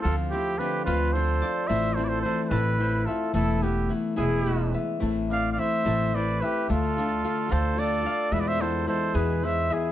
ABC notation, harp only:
X:1
M:6/8
L:1/8
Q:3/8=72
K:Am
V:1 name="Harp"
F, C D F c d | A, C E A c e | A, B, E ^G B e | A, C E A c e |
A, D F A d f | ^G, B, E ^G B e |]